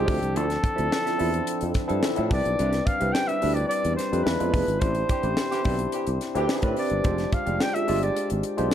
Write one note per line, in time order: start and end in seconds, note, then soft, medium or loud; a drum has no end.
0.00 0.38 G4 loud
0.05 0.18 D2 medium
0.05 0.64 F3 medium
0.05 0.65 C4 medium
0.05 0.17 C4 medium
0.05 0.65 D4 medium
0.05 0.65 E4 medium
0.05 0.17 F4 medium
0.05 0.65 A4 medium
0.05 0.18 A4 medium
0.05 0.18 E5 medium
0.05 kick loud
0.05 open hi-hat medium
0.21 0.37 C2 medium
0.21 muted clean electric guitar stroke soft
0.21 closed hi-hat soft
0.34 0.56 D2 loud
0.34 0.48 C4 medium
0.34 0.48 F4 medium
0.34 0.48 A4 medium
0.34 2.05 A4 medium
0.34 0.47 E5 medium
0.34 closed hi-hat medium
0.49 muted clean electric guitar stroke soft
0.49 snare soft
0.49 closed hi-hat soft
0.63 muted clean electric guitar stroke soft
0.63 kick loud
0.63 closed hi-hat medium
0.75 0.88 D2 medium
0.75 1.11 F3 medium
0.75 1.11 C4 medium
0.75 0.87 C4 soft
0.75 1.11 D4 medium
0.75 1.12 E4 medium
0.75 0.87 F4 soft
0.75 1.11 A4 medium
0.75 0.87 A4 soft
0.75 0.87 E5 medium
0.75 closed hi-hat soft
0.92 snare loud
1.05 1.16 C4 medium
1.05 1.16 F4 medium
1.05 1.15 A4 medium
1.05 1.15 E5 medium
1.05 snare soft
1.05 closed hi-hat soft
1.18 1.40 E2 medium
1.18 1.77 F3 medium
1.18 1.77 C4 medium
1.18 1.32 C4 medium
1.18 1.77 D4 medium
1.18 1.77 E4 medium
1.18 1.32 F4 medium
1.18 1.77 A4 medium
1.18 1.32 A4 medium
1.18 1.32 E5 medium
1.18 open hi-hat medium
1.33 muted clean electric guitar stroke soft
1.33 closed hi-hat medium
1.47 muted clean electric guitar stroke soft
1.47 closed hi-hat medium
1.61 1.72 F2 medium
1.61 muted clean electric guitar stroke soft
1.61 closed hi-hat medium
1.74 kick medium
1.74 snare soft
1.74 closed hi-hat medium
1.87 2.00 G2 medium
1.87 2.11 F3 medium
1.87 2.11 C4 medium
1.87 2.12 D4 medium
1.87 2.12 E4 medium
1.87 2.12 A4 loud
1.87 muted clean electric guitar stroke soft
1.87 closed hi-hat soft
2.03 muted clean electric guitar stroke soft
2.03 snare loud
2.15 2.28 A2 medium
2.15 2.30 F3 medium
2.15 2.28 C4 medium
2.15 2.30 C4 medium
2.15 2.28 D4 medium
2.15 2.31 E4 medium
2.15 2.30 F4 medium
2.15 2.31 A4 medium
2.15 2.30 A4 medium
2.15 2.30 E5 medium
2.15 closed hi-hat soft
2.29 2.41 C2 medium
2.29 2.88 G3 medium
2.29 2.88 C4 medium
2.29 2.88 D4 medium
2.29 2.41 D4 medium
2.29 2.37 D#4 soft
2.29 2.42 G4 medium
2.29 2.89 B4 medium
2.29 2.42 B4 medium
2.29 2.88 D5 medium
2.29 2.42 E5 medium
2.29 kick loud
2.29 open hi-hat medium
2.37 2.92 E4 medium
2.45 2.55 B1 medium
2.45 muted clean electric guitar stroke soft
2.45 closed hi-hat soft
2.59 2.79 C2 loud
2.59 2.72 D4 medium
2.59 2.72 G4 medium
2.59 2.72 B4 medium
2.59 2.72 E5 medium
2.59 closed hi-hat medium
2.73 muted clean electric guitar stroke soft
2.73 snare soft
2.73 closed hi-hat soft
2.87 3.15 F5 loud
2.87 muted clean electric guitar stroke soft
2.87 kick loud
2.87 closed hi-hat medium
3.00 3.11 C2 medium
3.00 3.35 G3 medium
3.00 3.36 C4 medium
3.00 3.35 D4 medium
3.00 3.11 D4 soft
3.00 3.36 E4 medium
3.00 3.11 G4 medium
3.00 3.11 B4 medium
3.00 3.36 B4 medium
3.00 3.11 E5 medium
3.00 closed hi-hat soft
3.13 3.29 G5 loud
3.13 snare loud
3.28 3.39 D4 medium
3.28 3.39 G4 medium
3.28 3.39 B4 medium
3.28 3.38 E5 medium
3.28 3.56 E5 medium
3.28 closed hi-hat soft
3.42 3.63 D2 medium
3.42 4.00 G3 medium
3.42 4.00 C4 medium
3.42 3.55 D4 medium
3.42 4.01 D4 medium
3.42 4.01 E4 medium
3.42 3.56 G4 medium
3.42 3.55 B4 medium
3.42 4.01 B4 medium
3.42 3.55 E5 medium
3.42 open hi-hat medium
3.54 3.68 D5 medium
3.54 muted clean electric guitar stroke soft
3.54 closed hi-hat medium
3.68 3.95 D5 loud
3.68 muted clean electric guitar stroke soft
3.68 closed hi-hat medium
3.83 3.95 E2 medium
3.83 muted clean electric guitar stroke soft
3.83 closed hi-hat medium
3.96 4.25 C5 medium
3.96 snare soft
3.96 closed hi-hat medium
4.11 4.23 F2 medium
4.11 4.26 G3 medium
4.11 4.26 C4 medium
4.11 4.25 D4 medium
4.11 4.25 E4 medium
4.11 4.25 B4 medium
4.11 muted clean electric guitar stroke soft
4.11 closed hi-hat soft
4.24 4.36 E2 medium
4.24 4.38 G#3 medium
4.24 4.38 D4 medium
4.24 4.38 E4 medium
4.24 4.38 F4 medium
4.24 4.81 B4 medium
4.24 4.38 B4 medium
4.24 muted clean electric guitar stroke soft
4.24 snare loud
4.39 4.51 F2 medium
4.39 4.75 G#3 medium
4.39 4.52 B3 medium
4.39 4.75 D4 medium
4.39 4.75 E4 medium
4.39 4.53 F4 medium
4.39 4.75 F4 medium
4.39 4.53 G#4 medium
4.39 4.75 B4 medium
4.39 4.53 D5 medium
4.39 closed hi-hat soft
4.53 4.64 F1 medium
4.53 4.64 B3 medium
4.53 4.65 F4 medium
4.53 4.65 G#4 medium
4.53 4.65 D5 medium
4.53 kick medium
4.53 open hi-hat medium
4.68 4.78 G#1 medium
4.68 closed hi-hat soft
4.80 5.02 A1 loud
4.80 5.16 C4 medium
4.80 4.95 C4 medium
4.80 5.17 D4 medium
4.80 5.17 E4 medium
4.80 4.95 G4 medium
4.80 5.17 G4 medium
4.80 4.95 B4 medium
4.80 6.50 C5 medium
4.80 5.17 C5 medium
4.80 4.94 D5 medium
4.80 kick loud
4.80 closed hi-hat medium
4.95 muted clean electric guitar stroke soft
4.95 closed hi-hat soft
5.09 5.22 E3 medium
5.09 5.22 D4 medium
5.09 5.22 G4 medium
5.09 muted clean electric guitar stroke soft
5.09 kick medium
5.09 closed hi-hat medium
5.23 5.34 A1 loud
5.23 5.58 C4 medium
5.23 5.35 C4 soft
5.23 5.58 D4 medium
5.23 5.59 E4 medium
5.23 5.59 G4 medium
5.23 5.35 G4 medium
5.23 5.34 B4 medium
5.23 5.59 C5 medium
5.23 5.34 D5 medium
5.23 closed hi-hat soft
5.37 snare loud
5.50 5.60 E3 medium
5.50 5.62 C4 soft
5.50 5.60 D4 medium
5.50 5.60 G4 loud
5.50 5.62 G4 medium
5.50 5.62 B4 medium
5.50 5.62 D5 medium
5.50 snare soft
5.50 closed hi-hat soft
5.64 5.85 B1 medium
5.64 6.23 C4 medium
5.64 5.78 C4 medium
5.64 6.23 D4 medium
5.64 6.23 E4 medium
5.64 5.79 G4 medium
5.64 6.24 G4 medium
5.64 5.78 B4 medium
5.64 6.24 C5 medium
5.64 5.78 D5 medium
5.64 kick loud
5.64 open hi-hat medium
5.79 muted clean electric guitar stroke soft
5.79 closed hi-hat medium
5.92 6.05 E3 medium
5.92 6.05 D4 medium
5.92 6.05 G4 medium
5.92 muted clean electric guitar stroke soft
5.92 closed hi-hat medium
6.07 6.17 C2 medium
6.07 muted clean electric guitar stroke soft
6.07 closed hi-hat medium
6.21 snare soft
6.21 closed hi-hat medium
6.34 6.45 D2 medium
6.34 6.71 E3 medium
6.34 6.58 C4 medium
6.34 6.70 D4 medium
6.34 6.59 D4 medium
6.34 6.58 E4 medium
6.34 6.71 G4 loud
6.34 6.59 G4 medium
6.34 6.59 B4 medium
6.34 muted clean electric guitar stroke soft
6.34 closed hi-hat soft
6.49 muted clean electric guitar stroke soft
6.49 snare loud
6.62 6.73 A2 medium
6.62 6.98 C4 medium
6.62 6.75 C4 medium
6.62 6.98 D4 medium
6.62 6.98 E4 medium
6.62 6.76 G4 medium
6.62 6.98 G4 medium
6.62 6.76 B4 medium
6.62 6.98 B4 medium
6.62 6.76 D5 medium
6.62 kick medium
6.62 closed hi-hat soft
6.76 6.87 C4 medium
6.76 6.87 G4 medium
6.76 6.88 B4 medium
6.76 6.88 D5 medium
6.76 7.35 D5 medium
6.76 open hi-hat medium
6.90 7.01 G1 medium
6.90 closed hi-hat soft
7.04 7.25 F1 loud
7.04 7.39 G#3 medium
7.04 7.18 C4 medium
7.04 7.39 D4 medium
7.04 7.40 F4 medium
7.04 7.18 F4 medium
7.04 7.39 G4 medium
7.04 7.17 G#4 medium
7.04 7.40 C5 medium
7.04 7.17 D5 medium
7.04 kick loud
7.04 closed hi-hat medium
7.18 muted clean electric guitar stroke soft
7.18 snare soft
7.18 closed hi-hat soft
7.32 7.63 F5 medium
7.32 muted clean electric guitar stroke soft
7.32 kick medium
7.32 closed hi-hat medium
7.46 7.57 F1 medium
7.46 7.81 G#3 medium
7.46 7.57 C4 soft
7.46 7.81 D4 medium
7.46 7.57 F4 soft
7.46 7.81 F4 medium
7.46 7.82 G4 medium
7.46 7.57 G#4 medium
7.46 7.57 D5 medium
7.46 7.82 D5 medium
7.46 closed hi-hat soft
7.60 7.76 G5 loud
7.60 snare loud
7.74 7.85 C4 soft
7.74 7.85 F4 medium
7.74 7.85 G#4 medium
7.74 7.85 D5 medium
7.74 8.05 E5 medium
7.74 closed hi-hat soft
7.87 8.09 G1 medium
7.87 8.46 G#3 medium
7.87 8.01 C4 medium
7.87 8.46 D4 medium
7.87 8.46 F4 medium
7.87 8.01 F4 loud
7.87 8.47 G4 medium
7.87 8.01 G#4 loud
7.87 8.47 D5 medium
7.87 8.00 D5 loud
7.87 open hi-hat medium
8.02 8.31 D5 medium
8.02 muted clean electric guitar stroke soft
8.02 closed hi-hat medium
8.16 muted clean electric guitar stroke soft
8.16 closed hi-hat medium
8.30 8.41 G#1 medium
8.30 muted clean electric guitar stroke soft
8.30 closed hi-hat medium
8.43 closed hi-hat medium
8.57 8.69 B1 medium
8.57 8.74 G#3 medium
8.57 8.74 D4 medium
8.57 8.74 F4 medium
8.57 8.74 G4 medium
8.57 8.74 C5 loud
8.57 muted clean electric guitar stroke soft
8.57 closed hi-hat soft